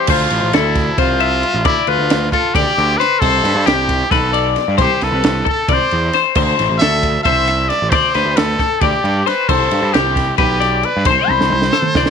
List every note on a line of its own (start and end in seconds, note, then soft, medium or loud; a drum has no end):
0.00 0.12 G4 medium
0.07 0.26 D2 loud
0.07 0.57 F4 loud
0.07 0.54 C5 medium
0.07 kick loud
0.07 crash loud
0.30 0.40 A1 loud
0.30 ride medium
0.43 0.51 A1 medium
0.53 0.89 D2 medium
0.53 1.01 E4 loud
0.53 0.98 A4 medium
0.53 snare loud
0.53 ride loud
0.75 kick medium
0.75 snare soft
0.75 ride medium
0.98 1.42 C2 medium
0.98 1.66 F4 loud
0.98 1.20 C5 medium
0.98 kick loud
0.98 ride loud
1.20 1.65 E5 medium
1.20 ride medium
1.43 ride medium
1.54 1.65 A1 medium
1.65 1.74 D2 loud
1.65 1.90 E4 loud
1.65 1.87 D5 medium
1.65 kick loud
1.65 ride loud
1.87 1.96 D2 loud
1.87 2.31 F4 medium
1.87 2.32 B4 medium
1.87 ride medium
1.99 2.08 D2 medium
2.10 2.28 D2 loud
2.10 snare loud
2.10 ride loud
2.32 2.56 F4 loud
2.32 2.55 A4 medium
2.32 kick medium
2.32 ride medium
2.54 2.64 D2 medium
2.54 2.99 G4 loud
2.54 3.00 D5 medium
2.54 kick loud
2.54 snare soft
2.54 ride loud
2.78 2.95 D2 loud
2.78 ride medium
2.98 3.21 B4 loud
2.98 3.21 C5 medium
2.98 ride medium
3.02 snare soft
3.20 3.39 C2 loud
3.20 3.68 A4 loud
3.20 3.67 C5 medium
3.20 kick loud
3.20 crash loud
3.44 3.53 G2 loud
3.44 snare soft
3.44 ride medium
3.55 3.64 G2 loud
3.66 4.02 C2 medium
3.66 4.11 G4 medium
3.66 4.12 G4 loud
3.66 snare loud
3.66 ride loud
3.89 kick medium
3.89 ride medium
4.11 4.55 B1 medium
4.11 4.51 A4 medium
4.11 4.33 B4 medium
4.11 kick loud
4.11 snare soft
4.11 ride loud
4.33 4.77 D5 medium
4.33 ride medium
4.56 snare soft
4.56 ride medium
4.68 4.80 G2 medium
4.78 4.87 C2 loud
4.78 5.05 G4 medium
4.78 5.01 C5 loud
4.78 kick loud
4.78 ride loud
5.01 5.10 C2 medium
5.01 5.47 A4 loud
5.01 5.46 B4 medium
5.01 snare soft
5.01 ride medium
5.12 5.21 C2 medium
5.24 5.41 C2 medium
5.24 snare loud
5.24 ride loud
5.45 5.68 A4 medium
5.45 5.74 A4 loud
5.45 kick medium
5.45 ride medium
5.68 5.77 C2 loud
5.68 6.13 D5 medium
5.68 kick loud
5.68 ride loud
5.73 6.21 C5 loud
5.91 6.09 E2 medium
5.91 ride medium
6.13 6.35 C5 medium
6.13 snare soft
6.13 ride medium
6.35 6.53 D2 loud
6.35 6.81 C5 medium
6.35 kick loud
6.35 crash loud
6.59 6.68 A1 loud
6.59 snare soft
6.59 ride medium
6.70 6.79 A1 medium
6.78 7.16 D2 medium
6.78 7.26 A4 medium
6.78 7.21 E5 loud
6.78 snare loud
6.78 ride loud
7.03 kick medium
7.03 ride medium
7.23 7.69 C2 medium
7.23 7.48 C5 medium
7.23 7.70 E5 loud
7.23 kick loud
7.23 ride loud
7.48 7.92 E5 medium
7.48 snare soft
7.48 ride medium
7.69 7.92 D5 loud
7.69 snare soft
7.69 ride medium
7.82 7.92 A1 medium
7.90 8.01 D2 loud
7.90 8.38 C5 loud
7.90 8.15 D5 medium
7.90 kick loud
7.90 ride loud
8.14 8.24 D2 loud
8.14 8.60 B4 medium
8.14 snare soft
8.14 ride medium
8.25 8.34 D2 medium
8.36 8.55 D2 loud
8.36 8.82 A4 loud
8.36 snare loud
8.36 ride loud
8.59 8.82 A4 medium
8.59 kick medium
8.59 snare soft
8.59 ride medium
8.81 8.91 D2 loud
8.81 9.29 G4 medium
8.81 9.26 D5 medium
8.81 kick loud
8.81 ride loud
9.04 9.22 G2 loud
9.04 ride medium
9.26 9.50 B4 medium
9.26 9.48 C5 medium
9.26 snare soft
9.26 ride medium
9.49 9.67 C2 loud
9.49 9.95 A4 loud
9.49 9.94 C5 medium
9.49 kick loud
9.49 crash medium
9.71 9.80 G2 loud
9.71 ride medium
9.82 9.91 G2 loud
9.93 10.30 C2 medium
9.93 10.37 G4 medium
9.93 10.39 G4 medium
9.93 snare loud
9.93 ride loud
10.16 kick medium
10.16 snare soft
10.16 ride medium
10.38 10.83 B1 loud
10.38 10.86 G4 medium
10.38 10.60 B4 medium
10.38 kick loud
10.38 ride loud
10.60 11.06 D5 medium
10.60 snare soft
10.60 ride medium
10.83 11.09 B4 medium
10.83 ride medium
10.97 11.07 G2 medium
11.05 11.15 C2 loud
11.05 11.28 C5 medium
11.05 12.10 C5 loud
11.05 kick loud
11.05 ride loud
11.28 11.38 C2 loud
11.28 11.73 B5 medium
11.28 high tom medium
11.41 11.49 C2 medium
11.41 snare medium
11.50 11.69 C2 loud
11.50 high tom medium
11.62 snare medium
11.73 11.96 A4 medium
11.73 snare medium
11.82 mid tom medium
11.95 12.04 C2 loud
11.95 12.10 D5 medium
11.95 kick loud
11.95 snare medium
12.06 snare medium